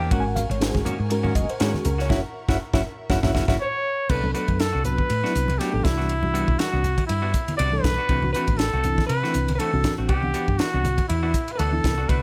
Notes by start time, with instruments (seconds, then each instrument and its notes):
Already playing: fretless electric bass E2
0.00 clean electric guitar A#3 D4 G4, reed electric piano G5
0.11 fretless electric bass G#1, clean electric guitar D#3 A#3 C#4 F#4, reed electric piano G#3 C#4 F#4 A#4 F#5, string section A#4 F#5 G#5 C#6, kick, ride
0.20 reed electric piano G#5
0.25 reed electric piano F#5, muted clean electric guitar stroke
0.36 reed electric piano F5, hi-hat pedal, ride, high conga
0.50 fretless electric bass G#1, reed electric piano C#5, muted clean electric guitar stroke, ride
0.60 reed electric piano G#3 C#4 F#4 G#4 C5, snare, ride
0.74 fretless electric bass G#1, reed electric piano G#4, muted clean electric guitar stroke, kick, snare
0.85 clean electric guitar D#3 A#3 C#4 F#4, muted fretless electric bass stroke, hi-hat pedal, ride, low conga
0.99 fretless electric bass G#2, muted clean electric guitar stroke
1.10 reed electric piano G#3 C#4 F#4 A#4, muted clean electric guitar stroke, ride
1.23 clean electric guitar D#3 A#3 C#4 F#4, high conga, low conga
1.34 fretless electric bass F#1, reed electric piano D#5, muted clean electric guitar stroke, kick, hi-hat pedal, ride
1.49 reed electric piano C5, muted fretless electric bass stroke, ride
1.60 fretless electric bass G#2, clean electric guitar D#3 A#3 C#4 F#4, reed electric piano G#3 C#4 F#4 G#4 C#5, snare, ride
1.74 reed electric piano F#4, muted clean electric guitar stroke, muted fretless electric bass stroke, snare, high conga
1.85 fretless electric bass C#2, reed electric piano A#4, muted clean electric guitar stroke, hi-hat pedal, ride, low conga
1.98 clean electric guitar A#3 C#4 F#4, reed electric piano C#5, snare
2.09 fretless electric bass F#1, clean electric guitar C#4 E4 F#4, reed electric piano C#4 E4 F#4 C#5 E5 F#5, string section E5, kick, snare, low conga
2.48 fretless electric bass F#1, reed electric piano C#4 E4 F#4 C#5 E5 F#5, clean electric guitar C#4 E4 F#4, kick, snare, low conga
2.74 fretless electric bass F#1, reed electric piano C#4 E4 F#4 C#5 E5 F#5, clean electric guitar C#4 E4 F#4, kick, snare, low conga
3.10 fretless electric bass F#1, clean electric guitar C#4 E4 F#4, reed electric piano C#4 E4 F#4 C#5 E5 F#5, kick, snare, low conga
3.23 fretless electric bass F#1, reed electric piano C#4 E4 F#4 C#5 E5 F#5, clean electric guitar C#4 E4 F#4, kick, snare, low conga
3.34 fretless electric bass F#1, clean electric guitar C#4 E4 F#4, reed electric piano C#4 E4 F#4 C#5 E5 F#5, kick, snare, low conga
3.48 fretless electric bass F#1, reed electric piano C#4 E4 F#4 C#5 E5 F#5, clean electric guitar C#4 E4 F#4, kick, snare, low conga
3.61 trumpet C#5, hollow-body jazz guitar C#5
4.09 fretless electric bass C2, reed electric piano F#3 B3 D4 A4, clean electric guitar A3 D4 F#4, trumpet B4, hollow-body jazz guitar B4, kick, crash
4.23 reed electric piano F#3 B3 D4 A4, muted clean electric guitar stroke, high conga, low conga
4.34 clean electric guitar A3 D4 F#4, trumpet B4, hollow-body jazz guitar B4, hi-hat pedal, ride
4.48 fretless electric bass F#2, muted clean electric guitar stroke, kick, ride, high conga
4.59 hollow-body jazz guitar A4, trumpet A4, snare, ride
4.73 fretless electric bass C2, clean electric guitar D4 F#4
4.84 reed electric piano F#3 B3 D4 F#4, hollow-body jazz guitar B4, trumpet B4, muted clean electric guitar stroke, hi-hat pedal, ride, low conga
4.98 muted clean electric guitar stroke, kick, high conga
5.09 fretless electric bass A2, muted clean electric guitar stroke, ride
5.23 reed electric piano F#3 B3 D4 E4, clean electric guitar A3 D4 F#4, snare
5.35 fretless electric bass C2, hi-hat pedal, ride
5.48 ride, high conga
5.58 reed electric piano F#3 B3 D4 F#4, clean electric guitar A3 D4 F#4, trumpet G4, hollow-body jazz guitar G4, snare, ride
5.73 fretless electric bass A1, reed electric piano F#3 B3 D4 A4, muted clean electric guitar stroke
5.84 fretless electric bass C2, reed electric piano E3 G3 D4 F#4, trumpet E4, hollow-body jazz guitar E4, muted clean electric guitar stroke, kick, snare, hi-hat pedal, ride, low conga
5.97 clean electric guitar B3 D4 F#4, snare
6.09 ride
6.23 reed electric piano E3 G3 D4 F#4, muted clean electric guitar stroke, high conga, low conga
6.34 clean electric guitar G3 B3 D4 F#4, hi-hat pedal, ride
6.47 fretless electric bass B1, muted clean electric guitar stroke, kick, high conga
6.59 trumpet F#4, hollow-body jazz guitar F#4, muted fretless electric bass stroke, snare, ride
6.72 fretless electric bass C2, clean electric guitar B3 D4 F#4
6.84 muted clean electric guitar stroke, hi-hat pedal, ride, low conga
6.97 muted clean electric guitar stroke, kick, ride, high conga
7.07 fretless electric bass G2, trumpet E4, hollow-body jazz guitar E4, muted clean electric guitar stroke, ride
7.22 clean electric guitar G3 B3 D4 F#4
7.33 muted clean electric guitar stroke, kick, hi-hat pedal, ride
7.48 ride, high conga
7.57 fretless electric bass C2, clean electric guitar G3 B3 D4 F#4, trumpet D5, hollow-body jazz guitar D5, ride
7.72 reed electric piano E3 G3 D4 A4, muted clean electric guitar stroke
7.82 fretless electric bass B1, hollow-body jazz guitar B4, trumpet B4, muted clean electric guitar stroke, kick, snare, hi-hat pedal, ride, low conga
7.98 clean electric guitar B3 D4 F#4
8.09 fretless electric bass C2, reed electric piano E3 C4 D4 F#4, clean electric guitar E3 A3 C4 F#4, kick, ride
8.22 reed electric piano E3 C4 D4 F#4, muted clean electric guitar stroke, high conga, low conga
8.33 clean electric guitar E3 A3 C4 F#4, hollow-body jazz guitar B4, trumpet B4, hi-hat pedal, ride
8.47 fretless electric bass A1, muted clean electric guitar stroke, kick, ride, high conga
8.56 hollow-body jazz guitar A4, trumpet A4, snare, ride
8.73 fretless electric bass C2, clean electric guitar A3 C4 F#4
8.84 reed electric piano E3 C4 D4 E4, muted clean electric guitar stroke, hi-hat pedal, ride, low conga
8.98 muted clean electric guitar stroke, kick, snare, high conga
9.07 fretless electric bass C3, hollow-body jazz guitar B4, trumpet B4, muted clean electric guitar stroke, ride
9.23 reed electric piano E3 C4 D4 E4, clean electric guitar E3 A3 C4 F#4, snare
9.34 fretless electric bass C2, muted clean electric guitar stroke, hi-hat pedal, ride
9.48 ride, high conga
9.54 trumpet B4, hollow-body jazz guitar B4
9.58 reed electric piano E3 C4 D4 A4, clean electric guitar E3 A3 C4 F#4, trumpet A4, hollow-body jazz guitar A4, ride
9.73 fretless electric bass C2, reed electric piano E3 C4 D4 F#4, muted clean electric guitar stroke
9.84 muted clean electric guitar stroke, kick, snare, hi-hat pedal, ride, low conga
9.98 fretless electric bass A1, clean electric guitar A3 C4 F#4
10.08 fretless electric bass C2, clean electric guitar E3 B3 D4 F#4, trumpet G4, hollow-body jazz guitar G4, kick, ride
10.23 reed electric piano E3 B3 D4 F#5, muted clean electric guitar stroke, high conga
10.34 clean electric guitar E3 B3 D4 F#4, hi-hat pedal, ride
10.48 fretless electric bass G2, kick, high conga
10.58 hollow-body jazz guitar F#4, trumpet F#4, muted fretless electric bass stroke, snare, ride
10.74 fretless electric bass C2, clean electric guitar B3 D4 F#4
10.84 muted clean electric guitar stroke, hi-hat pedal, ride, high conga, low conga
10.97 muted clean electric guitar stroke, kick, ride, high conga
11.08 fretless electric bass E2, trumpet E4, hollow-body jazz guitar E4, muted clean electric guitar stroke, ride
11.23 clean electric guitar E3 B3 D4 F#4
11.34 muted clean electric guitar stroke, kick, hi-hat pedal, ride
11.48 trumpet B4, ride
11.56 fretless electric bass D2, clean electric guitar E3, trumpet A4, hollow-body jazz guitar A4 B4, ride
11.60 clean electric guitar B3 D4 F#4
11.72 reed electric piano E3 B3 D4 E4, muted clean electric guitar stroke
11.84 fretless electric bass C2, muted clean electric guitar stroke, kick, snare, hi-hat pedal, ride, low conga
11.98 clean electric guitar B3 D4 F#4
12.08 fretless electric bass C2, reed electric piano D3 A3 B3 F#4, clean electric guitar A3 D4 F#4, trumpet B4, hollow-body jazz guitar B4, kick, ride